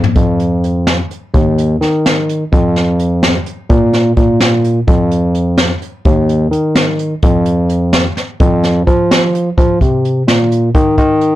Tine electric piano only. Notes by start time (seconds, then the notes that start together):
0.16 F2
1.34 D#2
1.81 D#3
2.53 F2
3.70 A#2
4.17 A#2
4.88 F2
6.05 D#2
6.51 D#3
7.23 F2
8.40 F2
8.87 F3
9.58 F3
9.81 C3
10.27 A#2
10.75 D#3
10.98 D#3